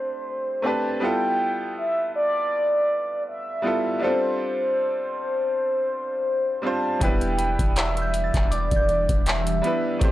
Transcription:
Already playing: grand piano C4 D4 G4 C5, soft synth lead C5
0.62 grand piano A3 C4 D4 G4, soft synth lead A5
0.67 grand piano B4
1.00 grand piano G3 B3 E4 F4, soft synth lead G5
1.05 grand piano A4
1.78 soft synth lead E5
2.16 soft synth lead D5
3.28 soft synth lead E5
3.62 grand piano G3 B3 E4 F4
3.67 grand piano A4
3.99 grand piano G3 B3 D4 F4, soft synth lead C5
4.04 grand piano C4 A4
6.62 grand piano G3 C4 D4 F4, soft synth lead A5
6.67 grand piano C5
6.99 808-style bass E1, ambient pad E3 G3 D4 G4, grand piano F#3 B3 D4 E4, soft synth lead G5, kick, closed hi-hat
7.04 grand piano G3 B4
7.21 closed hi-hat
7.38 synth bell B5, closed hi-hat
7.59 808-style bass E1, kick, closed hi-hat
7.76 soft synth lead E5, synth bell E6, clap, closed hi-hat
7.97 closed hi-hat
8.02 synth bell G6
8.14 closed hi-hat
8.24 synth bell A6
8.34 808-style bass E1, kick, clap, closed hi-hat
8.51 soft synth lead D5, synth bell D6, closed hi-hat
8.71 808-style bass E1, kick, closed hi-hat
8.76 synth bell G6
8.89 closed hi-hat
9.09 808-style bass E1, kick, closed hi-hat
9.26 soft synth lead E5, clap, closed hi-hat
9.47 closed hi-hat
9.62 grand piano G3 B3 D4 E4, synth bell B5, closed hi-hat
9.67 grand piano B4
9.99 808-style bass A1, grand piano A3 C4 D4 G4, soft synth lead C5, kick, closed hi-hat
10.04 grand piano C5

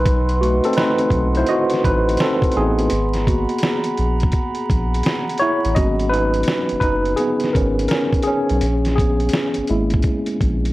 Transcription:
Already playing: sub bass B1, tine electric piano D#4 B4, glass harmonica B4 D#5 F#5 C6
0.05 kick, closed hi-hat
0.29 closed hi-hat
0.41 tine electric piano A3 F#4, closed hi-hat
0.64 tine electric piano C4 A4, closed hi-hat
0.73 tine electric piano A3 B4, closed hi-hat
0.77 tine electric piano C4 D#4, snare
0.98 closed hi-hat
1.10 sub bass B1, kick, closed hi-hat
1.35 tine electric piano E4 C5, closed hi-hat
1.47 tine electric piano F#4 D#5, closed hi-hat
1.70 snare, closed hi-hat
1.84 sub bass A1, tine electric piano D#4 B4, kick, closed hi-hat
2.09 closed hi-hat
2.17 tine electric piano A4, snare, closed hi-hat
2.21 tine electric piano C4
2.42 kick, closed hi-hat
2.52 closed hi-hat
2.56 sub bass A1, tine electric piano A3 B3 C4 D#4 G#4
2.79 closed hi-hat
2.89 sub bass G#1, glass harmonica G#4 F#5 A#5 B5, closed hi-hat
3.14 snare, closed hi-hat
3.27 tine electric piano A#3 B3 F#4, kick, closed hi-hat
3.49 closed hi-hat
3.58 closed hi-hat
3.63 snare
3.84 closed hi-hat
3.97 sub bass A#1, closed hi-hat
4.20 kick, closed hi-hat
4.32 kick, closed hi-hat
4.55 closed hi-hat
4.70 sub bass A#1, kick, closed hi-hat
4.94 closed hi-hat
5.03 snare, closed hi-hat
5.29 closed hi-hat
5.38 tine electric piano E4 C#5, closed hi-hat
5.65 sub bass A1, closed hi-hat
5.75 sub bass G#1, tine electric piano F#3 A#3 B3 C#4 F#4 D#5, kick, closed hi-hat
5.99 closed hi-hat
6.09 tine electric piano D#4 B4
6.14 closed hi-hat
6.34 closed hi-hat
6.43 closed hi-hat
6.48 snare
6.69 sub bass F#1, closed hi-hat
6.80 sub bass F#1, tine electric piano D#4 B4, kick, closed hi-hat
7.05 closed hi-hat
7.16 tine electric piano B3 G#4, closed hi-hat
7.40 snare, closed hi-hat
7.53 sub bass G#1, tine electric piano C#4 A#4, kick, closed hi-hat
7.79 closed hi-hat
7.88 tine electric piano C#4 A#4, snare, closed hi-hat
8.13 kick, closed hi-hat
8.23 tine electric piano G#4, closed hi-hat
8.27 tine electric piano C#4
8.50 sub bass B1, closed hi-hat
8.61 sub bass A#1, closed hi-hat
8.85 snare, closed hi-hat
8.96 tine electric piano B3 G#4, kick, closed hi-hat
9.20 closed hi-hat
9.29 closed hi-hat
9.33 snare
9.54 sub bass G#1, closed hi-hat
9.67 sub bass G#1, tine electric piano G#3 A#3 E4, closed hi-hat
9.90 kick, closed hi-hat
10.02 kick, closed hi-hat
10.26 closed hi-hat
10.41 sub bass A#1, kick, closed hi-hat
10.65 closed hi-hat

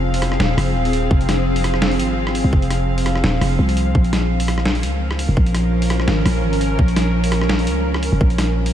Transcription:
Already playing: 808-style bass F1, synth drone F3 C4 G#4 F5
0.14 open hi-hat
0.22 cross-stick, closed hi-hat
0.32 cross-stick
0.40 808-style bass D#1, snare
0.57 808-style bass F1, cross-stick, open hi-hat
0.75 808-style bass D#1
0.85 open hi-hat
0.93 closed hi-hat
1.11 808-style bass F1, kick
1.21 closed hi-hat
1.29 cross-stick, snare, closed hi-hat
1.56 open hi-hat
1.64 cross-stick, closed hi-hat
1.74 cross-stick
1.82 snare
1.91 open hi-hat
1.99 808-style bass G#1, closed hi-hat
2.27 cross-stick
2.35 open hi-hat
2.44 808-style bass C2
2.53 808-style bass F1, kick
2.62 closed hi-hat
2.70 cross-stick, closed hi-hat
2.98 open hi-hat
3.06 cross-stick, closed hi-hat
3.15 cross-stick
3.24 808-style bass D#1, snare
3.41 808-style bass F1, cross-stick, open hi-hat
3.59 808-style bass C2
3.69 open hi-hat
3.77 closed hi-hat
3.95 808-style bass A#1, synth drone F3, kick
4.04 closed hi-hat
4.13 cross-stick, snare, closed hi-hat
4.17 synth drone A#4
4.37 synth drone C#4, open hi-hat
4.48 cross-stick, closed hi-hat
4.58 cross-stick
4.66 snare
4.75 open hi-hat
4.83 808-style bass C#2, closed hi-hat
5.11 cross-stick
5.19 open hi-hat
5.29 808-style bass F1
5.37 808-style bass A#1, kick
5.46 closed hi-hat
5.55 cross-stick, closed hi-hat
5.82 open hi-hat
5.90 cross-stick, closed hi-hat
6.00 cross-stick
6.08 808-style bass G#1, snare
6.25 808-style bass A#1, cross-stick, open hi-hat
6.43 808-style bass G#1
6.53 open hi-hat
6.61 closed hi-hat
6.79 808-style bass A#1, kick
6.88 closed hi-hat
6.96 cross-stick, snare, closed hi-hat
7.24 open hi-hat
7.32 cross-stick, closed hi-hat
7.42 cross-stick
7.49 snare
7.59 open hi-hat
7.67 808-style bass C#2, closed hi-hat
7.94 cross-stick
8.03 open hi-hat
8.12 808-style bass F1
8.21 808-style bass A#1, kick
8.30 closed hi-hat
8.38 cross-stick, snare, closed hi-hat
8.66 open hi-hat

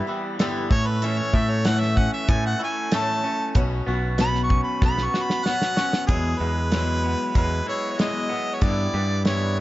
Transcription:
Already playing: clean electric guitar E3 G3 B3, reed electric piano G4 B4 E5
0.07 steel-string acoustic guitar E3 G3 B3 E4
0.39 steel-string acoustic guitar G2 D3 E3 G3 B3 E4, reed electric piano G4 B4 D5, snare, closed hi-hat
0.69 picked electric bass A2, clean electric guitar A2, steel-string acoustic guitar A3 C#4 A4, reed electric piano A4 E5, harmonica C#5, kick
0.86 harmonica B4
1.02 steel-string acoustic guitar A2 E3 A3 C#4 A4, harmonica E5, closed hi-hat
1.19 harmonica C#5
1.33 picked electric bass A2, steel-string acoustic guitar A3 C#4 A4, harmonica E5, kick
1.50 harmonica C#5
1.65 steel-string acoustic guitar A2 E3 A3 C#4 A4, reed electric piano A4 C#5 E5, harmonica F#5, snare, closed hi-hat
1.80 harmonica E5, snare
1.97 clean electric guitar C#4, harmonica F#5, kick
2.13 harmonica E5
2.29 picked electric bass A2, steel-string acoustic guitar E3 A3 C#4 A4, reed electric piano A4 C#5 E5, harmonica G#5, kick, closed hi-hat
2.46 harmonica F#5
2.59 steel-string acoustic guitar A3 C#4 A4, clean electric guitar E4
2.64 harmonica G#5
2.91 steel-string acoustic guitar A2 E3 A3 C#4 A4, reed electric piano A4 C#5 E5, harmonica A5, snare, closed hi-hat
3.24 steel-string acoustic guitar A3 C#4 A4
3.55 picked electric bass B1, steel-string acoustic guitar B2 F#3 B3 C#4 F#4, reed electric piano B4 C#5 F#5, kick, closed hi-hat
3.87 picked electric bass B1, steel-string acoustic guitar B3 C#4 F#4
4.18 steel-string acoustic guitar B2 F#3 B3 C#4 F#4, reed electric piano B4 C#5 F#5, harmonica B5, snare, closed hi-hat
4.35 snare
4.43 harmonica C#6
4.49 clean electric guitar C#4, kick
4.63 harmonica B5
4.82 picked electric bass B1, steel-string acoustic guitar F#3 B3 C#4 F#4, reed electric piano B4 C#5 F#5, harmonica B5, kick, snare
4.98 snare
5.05 harmonica C#6
5.14 steel-string acoustic guitar B3 C#4 F#4, snare
5.23 harmonica B5
5.30 snare
5.45 steel-string acoustic guitar B2 F#3 B3 C#4 F#4, reed electric piano B4 C#5 F#5, harmonica F#5, snare
5.62 snare
5.77 steel-string acoustic guitar B3 C#4 F#4, snare
5.93 snare
6.07 picked electric bass E2, steel-string acoustic guitar E2 B2 F#3 G#3 B3 E4, harmonica G#4, kick, closed hi-hat
6.38 picked electric bass E2, steel-string acoustic guitar G#3 B3 E4, harmonica B4
6.43 steel-string acoustic guitar F#3
6.72 steel-string acoustic guitar E2 B2 F#3 G#3 B3 E4, snare, closed hi-hat
7.04 clean electric guitar B3
7.35 picked electric bass E2, steel-string acoustic guitar F#3 G#3 B3 E4, harmonica B4, kick, closed hi-hat
7.66 steel-string acoustic guitar F#3 G#3 B3 E4, harmonica C#5
7.91 harmonica C#5
7.99 steel-string acoustic guitar E2 B2 F#3 G#3 B3 E4, harmonica D#5, snare, closed hi-hat
8.31 steel-string acoustic guitar F#3 G#3 B3 E4
8.54 harmonica C#5
8.61 picked electric bass G2, steel-string acoustic guitar G2 D3 E3 G3 B3 E4, harmonica D5, kick, closed hi-hat
8.94 picked electric bass G2, steel-string acoustic guitar E3 G3 B3 E4
9.25 steel-string acoustic guitar G2 D3 E3 G3 B3 E4, harmonica C#5, snare, closed hi-hat

